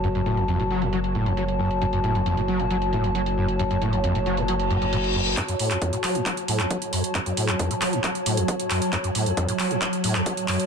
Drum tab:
HH |xxxxxxxxxxxxxx-x|xxxxxxxxxxxxxx-x|xxxxxxxxxxxxxx-x|xxoxxxoxxxoxxxox|
CP |----------------|----------------|----------------|x--x--x-x--x----|
BD |----------------|----------------|----------------|o---o---o---o---|

HH |xxoxxxoxxxoxxxox|xxoxxxoxxxoxxxox|
CP |x--x--x-x-----x-|x-----x-x--x--x-|
BD |o---o---o---o---|o---o---o---o---|